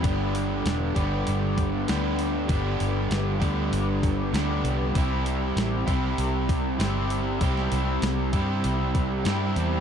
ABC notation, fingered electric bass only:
X:1
M:4/4
L:1/8
Q:1/4=98
K:G
V:1 name="Fingered electric bass" clef=bass
G,,,2 E,,, G,,, G,,,2 D,,2 | G,,, G,,, G,,, D,, G,,,2 D,, C,, | C,,2 A,,, C,, C,,2 G,,,2 | C,, C,, C,, G,, C,,2 G,, E,, |]